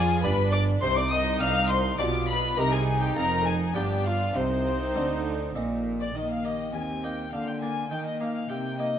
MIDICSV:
0, 0, Header, 1, 8, 480
1, 0, Start_track
1, 0, Key_signature, -3, "minor"
1, 0, Tempo, 584795
1, 676, Time_signature, 3, 2, 24, 8
1, 2597, Tempo, 598205
1, 4997, Tempo, 585938
1, 7319, End_track
2, 0, Start_track
2, 0, Title_t, "Violin section"
2, 0, Program_c, 0, 48
2, 0, Note_on_c, 0, 80, 101
2, 189, Note_off_c, 0, 80, 0
2, 194, Note_on_c, 0, 83, 100
2, 429, Note_on_c, 0, 86, 107
2, 435, Note_off_c, 0, 83, 0
2, 495, Note_off_c, 0, 86, 0
2, 671, Note_on_c, 0, 84, 113
2, 787, Note_on_c, 0, 86, 110
2, 791, Note_off_c, 0, 84, 0
2, 910, Note_on_c, 0, 87, 96
2, 911, Note_off_c, 0, 86, 0
2, 976, Note_off_c, 0, 87, 0
2, 1152, Note_on_c, 0, 89, 113
2, 1386, Note_on_c, 0, 84, 105
2, 1388, Note_off_c, 0, 89, 0
2, 1628, Note_on_c, 0, 86, 119
2, 1630, Note_off_c, 0, 84, 0
2, 1867, Note_off_c, 0, 86, 0
2, 1871, Note_on_c, 0, 83, 110
2, 2109, Note_off_c, 0, 83, 0
2, 2116, Note_on_c, 0, 82, 116
2, 2236, Note_off_c, 0, 82, 0
2, 2238, Note_on_c, 0, 80, 94
2, 2477, Note_off_c, 0, 80, 0
2, 2487, Note_on_c, 0, 79, 93
2, 2599, Note_off_c, 0, 79, 0
2, 2605, Note_on_c, 0, 82, 117
2, 2832, Note_off_c, 0, 82, 0
2, 2841, Note_on_c, 0, 80, 89
2, 3073, Note_on_c, 0, 79, 94
2, 3075, Note_off_c, 0, 80, 0
2, 3312, Note_off_c, 0, 79, 0
2, 3315, Note_on_c, 0, 77, 86
2, 3554, Note_off_c, 0, 77, 0
2, 3556, Note_on_c, 0, 72, 92
2, 4518, Note_off_c, 0, 72, 0
2, 4997, Note_on_c, 0, 67, 40
2, 5925, Note_off_c, 0, 67, 0
2, 5955, Note_on_c, 0, 65, 36
2, 6426, Note_off_c, 0, 65, 0
2, 6443, Note_on_c, 0, 63, 40
2, 6910, Note_off_c, 0, 63, 0
2, 6924, Note_on_c, 0, 63, 43
2, 7319, Note_off_c, 0, 63, 0
2, 7319, End_track
3, 0, Start_track
3, 0, Title_t, "Violin"
3, 0, Program_c, 1, 40
3, 0, Note_on_c, 1, 80, 91
3, 183, Note_off_c, 1, 80, 0
3, 188, Note_on_c, 1, 83, 87
3, 254, Note_off_c, 1, 83, 0
3, 429, Note_on_c, 1, 86, 89
3, 495, Note_off_c, 1, 86, 0
3, 667, Note_on_c, 1, 84, 106
3, 791, Note_on_c, 1, 86, 91
3, 804, Note_off_c, 1, 84, 0
3, 911, Note_on_c, 1, 87, 92
3, 923, Note_off_c, 1, 86, 0
3, 1149, Note_on_c, 1, 89, 94
3, 1161, Note_off_c, 1, 87, 0
3, 1383, Note_off_c, 1, 89, 0
3, 1388, Note_on_c, 1, 84, 86
3, 1623, Note_off_c, 1, 84, 0
3, 1628, Note_on_c, 1, 86, 77
3, 1694, Note_off_c, 1, 86, 0
3, 1865, Note_on_c, 1, 83, 91
3, 2113, Note_on_c, 1, 82, 103
3, 2125, Note_off_c, 1, 83, 0
3, 2233, Note_on_c, 1, 80, 79
3, 2246, Note_off_c, 1, 82, 0
3, 2474, Note_on_c, 1, 79, 77
3, 2486, Note_off_c, 1, 80, 0
3, 2587, Note_off_c, 1, 79, 0
3, 2592, Note_on_c, 1, 82, 98
3, 2826, Note_off_c, 1, 82, 0
3, 2832, Note_on_c, 1, 80, 62
3, 2896, Note_off_c, 1, 80, 0
3, 3066, Note_on_c, 1, 79, 65
3, 3130, Note_off_c, 1, 79, 0
3, 3308, Note_on_c, 1, 77, 82
3, 3552, Note_on_c, 1, 72, 75
3, 3564, Note_off_c, 1, 77, 0
3, 4516, Note_off_c, 1, 72, 0
3, 4880, Note_on_c, 1, 74, 61
3, 4996, Note_on_c, 1, 75, 54
3, 5008, Note_off_c, 1, 74, 0
3, 5116, Note_off_c, 1, 75, 0
3, 5122, Note_on_c, 1, 77, 47
3, 5237, Note_on_c, 1, 75, 47
3, 5249, Note_off_c, 1, 77, 0
3, 5471, Note_off_c, 1, 75, 0
3, 5476, Note_on_c, 1, 80, 58
3, 5719, Note_on_c, 1, 79, 47
3, 5731, Note_off_c, 1, 80, 0
3, 5958, Note_off_c, 1, 79, 0
3, 5963, Note_on_c, 1, 77, 53
3, 6079, Note_on_c, 1, 79, 48
3, 6092, Note_off_c, 1, 77, 0
3, 6189, Note_off_c, 1, 79, 0
3, 6194, Note_on_c, 1, 80, 62
3, 6430, Note_off_c, 1, 80, 0
3, 6440, Note_on_c, 1, 79, 57
3, 6555, Note_off_c, 1, 79, 0
3, 6560, Note_on_c, 1, 75, 51
3, 6675, Note_on_c, 1, 77, 49
3, 6687, Note_off_c, 1, 75, 0
3, 6908, Note_on_c, 1, 79, 52
3, 6920, Note_off_c, 1, 77, 0
3, 7145, Note_off_c, 1, 79, 0
3, 7149, Note_on_c, 1, 75, 56
3, 7319, Note_off_c, 1, 75, 0
3, 7319, End_track
4, 0, Start_track
4, 0, Title_t, "Violin section"
4, 0, Program_c, 2, 48
4, 0, Note_on_c, 2, 68, 92
4, 198, Note_on_c, 2, 71, 90
4, 199, Note_off_c, 2, 68, 0
4, 432, Note_off_c, 2, 71, 0
4, 435, Note_on_c, 2, 74, 89
4, 501, Note_off_c, 2, 74, 0
4, 672, Note_on_c, 2, 72, 109
4, 791, Note_off_c, 2, 72, 0
4, 795, Note_on_c, 2, 74, 84
4, 843, Note_off_c, 2, 74, 0
4, 914, Note_on_c, 2, 75, 95
4, 1148, Note_on_c, 2, 77, 98
4, 1149, Note_off_c, 2, 75, 0
4, 1386, Note_off_c, 2, 77, 0
4, 1395, Note_on_c, 2, 72, 89
4, 1460, Note_off_c, 2, 72, 0
4, 1636, Note_on_c, 2, 74, 89
4, 1701, Note_off_c, 2, 74, 0
4, 1876, Note_on_c, 2, 71, 92
4, 2112, Note_off_c, 2, 71, 0
4, 2120, Note_on_c, 2, 70, 110
4, 2237, Note_on_c, 2, 68, 86
4, 2238, Note_off_c, 2, 70, 0
4, 2476, Note_off_c, 2, 68, 0
4, 2478, Note_on_c, 2, 67, 78
4, 2597, Note_off_c, 2, 67, 0
4, 2600, Note_on_c, 2, 70, 94
4, 2829, Note_off_c, 2, 70, 0
4, 2833, Note_on_c, 2, 68, 73
4, 3068, Note_on_c, 2, 67, 77
4, 3071, Note_off_c, 2, 68, 0
4, 3305, Note_on_c, 2, 65, 70
4, 3309, Note_off_c, 2, 67, 0
4, 3549, Note_off_c, 2, 65, 0
4, 3551, Note_on_c, 2, 60, 80
4, 4516, Note_off_c, 2, 60, 0
4, 4879, Note_on_c, 2, 74, 60
4, 4926, Note_off_c, 2, 74, 0
4, 4991, Note_on_c, 2, 75, 39
4, 5110, Note_on_c, 2, 77, 40
4, 5111, Note_off_c, 2, 75, 0
4, 5234, Note_off_c, 2, 77, 0
4, 5236, Note_on_c, 2, 75, 45
4, 5469, Note_on_c, 2, 80, 50
4, 5477, Note_off_c, 2, 75, 0
4, 5535, Note_off_c, 2, 80, 0
4, 5717, Note_on_c, 2, 79, 42
4, 5952, Note_off_c, 2, 79, 0
4, 5954, Note_on_c, 2, 77, 50
4, 6074, Note_on_c, 2, 79, 44
4, 6075, Note_off_c, 2, 77, 0
4, 6193, Note_on_c, 2, 80, 47
4, 6195, Note_off_c, 2, 79, 0
4, 6430, Note_off_c, 2, 80, 0
4, 6438, Note_on_c, 2, 79, 53
4, 6556, Note_on_c, 2, 75, 41
4, 6557, Note_off_c, 2, 79, 0
4, 6673, Note_off_c, 2, 75, 0
4, 6678, Note_on_c, 2, 77, 49
4, 6912, Note_off_c, 2, 77, 0
4, 6921, Note_on_c, 2, 79, 48
4, 7158, Note_off_c, 2, 79, 0
4, 7164, Note_on_c, 2, 75, 45
4, 7319, Note_off_c, 2, 75, 0
4, 7319, End_track
5, 0, Start_track
5, 0, Title_t, "Viola section"
5, 0, Program_c, 3, 48
5, 0, Note_on_c, 3, 65, 81
5, 195, Note_on_c, 3, 62, 75
5, 197, Note_off_c, 3, 65, 0
5, 665, Note_off_c, 3, 62, 0
5, 675, Note_on_c, 3, 63, 77
5, 1631, Note_on_c, 3, 65, 72
5, 1633, Note_off_c, 3, 63, 0
5, 2114, Note_off_c, 3, 65, 0
5, 2115, Note_on_c, 3, 63, 82
5, 3052, Note_off_c, 3, 63, 0
5, 3064, Note_on_c, 3, 62, 71
5, 3539, Note_off_c, 3, 62, 0
5, 3554, Note_on_c, 3, 63, 72
5, 4835, Note_off_c, 3, 63, 0
5, 4994, Note_on_c, 3, 58, 39
5, 5443, Note_off_c, 3, 58, 0
5, 5475, Note_on_c, 3, 60, 39
5, 5953, Note_on_c, 3, 58, 38
5, 5956, Note_off_c, 3, 60, 0
5, 6425, Note_off_c, 3, 58, 0
5, 6434, Note_on_c, 3, 58, 42
5, 7319, Note_off_c, 3, 58, 0
5, 7319, End_track
6, 0, Start_track
6, 0, Title_t, "Harpsichord"
6, 0, Program_c, 4, 6
6, 0, Note_on_c, 4, 53, 60
6, 166, Note_off_c, 4, 53, 0
6, 197, Note_on_c, 4, 62, 53
6, 198, Note_on_c, 4, 43, 71
6, 203, Note_on_c, 4, 65, 55
6, 209, Note_on_c, 4, 67, 55
6, 643, Note_off_c, 4, 62, 0
6, 644, Note_off_c, 4, 43, 0
6, 646, Note_off_c, 4, 65, 0
6, 649, Note_off_c, 4, 67, 0
6, 678, Note_on_c, 4, 48, 69
6, 1122, Note_off_c, 4, 48, 0
6, 1148, Note_on_c, 4, 60, 54
6, 1149, Note_on_c, 4, 36, 65
6, 1153, Note_on_c, 4, 63, 54
6, 1154, Note_on_c, 4, 67, 53
6, 1496, Note_off_c, 4, 60, 0
6, 1498, Note_off_c, 4, 63, 0
6, 1499, Note_off_c, 4, 67, 0
6, 1598, Note_off_c, 4, 36, 0
6, 1630, Note_on_c, 4, 62, 54
6, 1631, Note_on_c, 4, 47, 70
6, 1635, Note_on_c, 4, 65, 55
6, 1640, Note_on_c, 4, 67, 54
6, 2081, Note_off_c, 4, 47, 0
6, 2081, Note_off_c, 4, 62, 0
6, 2083, Note_off_c, 4, 65, 0
6, 2086, Note_off_c, 4, 67, 0
6, 2112, Note_on_c, 4, 60, 53
6, 2113, Note_on_c, 4, 48, 63
6, 2117, Note_on_c, 4, 63, 55
6, 2121, Note_on_c, 4, 67, 54
6, 2561, Note_off_c, 4, 60, 0
6, 2562, Note_off_c, 4, 48, 0
6, 2564, Note_off_c, 4, 63, 0
6, 2566, Note_off_c, 4, 67, 0
6, 2589, Note_on_c, 4, 60, 46
6, 2592, Note_on_c, 4, 41, 64
6, 2597, Note_on_c, 4, 65, 45
6, 3035, Note_off_c, 4, 60, 0
6, 3036, Note_off_c, 4, 41, 0
6, 3039, Note_off_c, 4, 65, 0
6, 3063, Note_on_c, 4, 43, 60
6, 3064, Note_on_c, 4, 59, 50
6, 3070, Note_on_c, 4, 62, 50
6, 3075, Note_on_c, 4, 65, 54
6, 3516, Note_off_c, 4, 43, 0
6, 3516, Note_off_c, 4, 59, 0
6, 3519, Note_off_c, 4, 62, 0
6, 3522, Note_off_c, 4, 65, 0
6, 3551, Note_on_c, 4, 48, 58
6, 4001, Note_off_c, 4, 48, 0
6, 4033, Note_on_c, 4, 50, 60
6, 4035, Note_on_c, 4, 60, 41
6, 4041, Note_on_c, 4, 63, 52
6, 4382, Note_off_c, 4, 60, 0
6, 4386, Note_off_c, 4, 63, 0
6, 4484, Note_off_c, 4, 50, 0
6, 4515, Note_on_c, 4, 46, 59
6, 4518, Note_on_c, 4, 60, 47
6, 4519, Note_on_c, 4, 63, 52
6, 4863, Note_off_c, 4, 60, 0
6, 4863, Note_off_c, 4, 63, 0
6, 4963, Note_off_c, 4, 46, 0
6, 4994, Note_on_c, 4, 51, 34
6, 5239, Note_on_c, 4, 58, 25
6, 5243, Note_on_c, 4, 63, 29
6, 5444, Note_off_c, 4, 51, 0
6, 5476, Note_on_c, 4, 39, 31
6, 5584, Note_off_c, 4, 58, 0
6, 5587, Note_off_c, 4, 63, 0
6, 5720, Note_on_c, 4, 58, 28
6, 5724, Note_on_c, 4, 63, 29
6, 5891, Note_off_c, 4, 58, 0
6, 5894, Note_off_c, 4, 63, 0
6, 5923, Note_off_c, 4, 39, 0
6, 5961, Note_on_c, 4, 50, 32
6, 6201, Note_on_c, 4, 58, 28
6, 6202, Note_on_c, 4, 65, 29
6, 6372, Note_off_c, 4, 58, 0
6, 6373, Note_off_c, 4, 65, 0
6, 6406, Note_off_c, 4, 50, 0
6, 6438, Note_on_c, 4, 51, 35
6, 6677, Note_on_c, 4, 58, 27
6, 6682, Note_on_c, 4, 63, 30
6, 6849, Note_off_c, 4, 58, 0
6, 6884, Note_off_c, 4, 51, 0
6, 6917, Note_on_c, 4, 48, 34
6, 7025, Note_off_c, 4, 63, 0
6, 7159, Note_on_c, 4, 58, 28
6, 7161, Note_on_c, 4, 63, 29
6, 7319, Note_off_c, 4, 48, 0
6, 7319, Note_off_c, 4, 58, 0
6, 7319, Note_off_c, 4, 63, 0
6, 7319, End_track
7, 0, Start_track
7, 0, Title_t, "Cello section"
7, 0, Program_c, 5, 48
7, 0, Note_on_c, 5, 53, 79
7, 186, Note_off_c, 5, 53, 0
7, 196, Note_on_c, 5, 43, 85
7, 671, Note_on_c, 5, 48, 81
7, 675, Note_off_c, 5, 43, 0
7, 1142, Note_off_c, 5, 48, 0
7, 1150, Note_on_c, 5, 36, 89
7, 1632, Note_off_c, 5, 36, 0
7, 1633, Note_on_c, 5, 47, 78
7, 2105, Note_off_c, 5, 47, 0
7, 2112, Note_on_c, 5, 48, 72
7, 2584, Note_off_c, 5, 48, 0
7, 2595, Note_on_c, 5, 41, 81
7, 3061, Note_off_c, 5, 41, 0
7, 3068, Note_on_c, 5, 43, 70
7, 3541, Note_off_c, 5, 43, 0
7, 3547, Note_on_c, 5, 48, 67
7, 4021, Note_off_c, 5, 48, 0
7, 4031, Note_on_c, 5, 50, 70
7, 4512, Note_on_c, 5, 46, 71
7, 4515, Note_off_c, 5, 50, 0
7, 4984, Note_off_c, 5, 46, 0
7, 4995, Note_on_c, 5, 51, 44
7, 5444, Note_off_c, 5, 51, 0
7, 5475, Note_on_c, 5, 39, 40
7, 5946, Note_off_c, 5, 39, 0
7, 5956, Note_on_c, 5, 50, 45
7, 6433, Note_on_c, 5, 51, 42
7, 6436, Note_off_c, 5, 50, 0
7, 6904, Note_off_c, 5, 51, 0
7, 6912, Note_on_c, 5, 48, 44
7, 7319, Note_off_c, 5, 48, 0
7, 7319, End_track
8, 0, Start_track
8, 0, Title_t, "Double bass section"
8, 0, Program_c, 6, 48
8, 0, Note_on_c, 6, 41, 81
8, 186, Note_off_c, 6, 41, 0
8, 193, Note_on_c, 6, 31, 77
8, 669, Note_on_c, 6, 36, 86
8, 674, Note_off_c, 6, 31, 0
8, 1137, Note_off_c, 6, 36, 0
8, 1147, Note_on_c, 6, 36, 84
8, 1627, Note_on_c, 6, 35, 74
8, 1630, Note_off_c, 6, 36, 0
8, 2102, Note_off_c, 6, 35, 0
8, 2107, Note_on_c, 6, 36, 77
8, 2582, Note_off_c, 6, 36, 0
8, 2596, Note_on_c, 6, 29, 77
8, 3061, Note_off_c, 6, 29, 0
8, 3071, Note_on_c, 6, 31, 72
8, 3542, Note_off_c, 6, 31, 0
8, 3552, Note_on_c, 6, 36, 79
8, 4024, Note_off_c, 6, 36, 0
8, 4033, Note_on_c, 6, 38, 77
8, 4515, Note_on_c, 6, 34, 60
8, 4516, Note_off_c, 6, 38, 0
8, 4985, Note_off_c, 6, 34, 0
8, 7319, End_track
0, 0, End_of_file